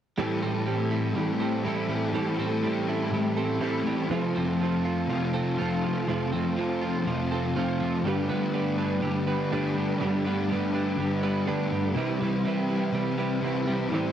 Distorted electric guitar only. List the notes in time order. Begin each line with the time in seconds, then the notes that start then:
0.18 A2 E3 A3
0.41 E3 A3
1.15 A2 E3 A3
1.64 A2 E3 A3
1.88 E3 A3
2.13 A2 E3 A3
2.37 E3 A3
3.11 A2 E3 A3
3.60 A2 E3 A3
3.84 E3 A3
4.08 F2 C3 F3
4.34 C3 F3
5.08 F2 C3 F3
5.58 F2 C3 F3
5.83 C3 F3
6.07 F2 C3 F3
6.31 C3 F3
7.04 F2 C3 F3
7.55 F2 C3 F3
7.80 C3 F3
8.03 G2 D3 G3
8.30 D3 G3
9.01 G2 D3 G3
9.51 G2 D3 G3
9.75 D3 G3
10.01 G2 D3 G3
10.24 D3 G3
10.97 G2 D3 G3
11.46 G2 D3 G3
11.72 D3 G3
11.94 C3 G3 C4
12.19 G3 C4
12.92 C3 G3 C4
13.41 C3 G3 C4
13.65 G3 C4
13.90 A2 E3 A3